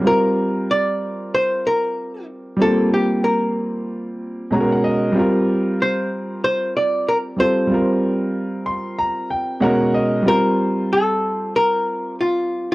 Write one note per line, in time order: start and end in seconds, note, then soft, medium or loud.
0.01 2.54 G3 medium
0.01 2.55 C4 medium
0.05 2.56 F4 medium
0.05 0.72 A#4 loud
0.05 2.58 A#4 medium
0.71 1.34 D5 loud
1.35 1.66 C5 loud
1.67 2.25 A#4 medium
2.57 4.46 G3 medium
2.57 4.47 C4 medium
2.61 4.50 A#3 medium
2.61 4.48 F4 medium
2.61 2.93 A4 medium
2.94 3.24 G4 medium
3.24 4.48 A#4 medium
4.50 5.15 B2 medium
4.50 5.16 G#3 medium
4.50 5.16 C#4 medium
4.50 5.16 F#4 medium
4.50 4.61 G#4 medium
4.50 4.71 A#5 medium
4.60 5.18 A#4 medium
4.72 4.83 F#5 medium
4.84 5.13 D#5 medium
5.12 7.33 G3 medium
5.12 7.34 C4 medium
5.17 7.35 F4 medium
5.17 7.37 A#4 medium
5.82 6.40 C5 medium
6.44 6.73 C5 loud
6.77 7.09 D5 loud
7.09 7.17 A#4 medium
7.36 7.66 G3 soft
7.36 7.68 C4 soft
7.36 7.70 F4 soft
7.36 7.71 A4 medium
7.36 9.27 C5 medium
7.67 9.57 G3 medium
7.67 9.58 C4 medium
7.72 9.59 F4 medium
7.72 9.60 A#4 medium
8.66 8.96 C6 medium
8.99 9.28 A#5 medium
9.30 9.60 G5 medium
9.60 10.25 B2 medium
9.60 10.25 G#3 medium
9.60 10.26 C#4 medium
9.60 10.26 F#4 medium
9.60 10.27 A#4 medium
9.60 9.92 F#5 medium
9.94 10.24 D#5 medium
10.23 12.75 G3 medium
10.23 12.75 C4 medium
10.27 12.75 F4 medium
10.27 10.92 A#4 loud
10.27 12.75 C5 medium
10.93 11.56 A4 medium
11.56 12.15 A#4 loud
12.21 12.71 F4 medium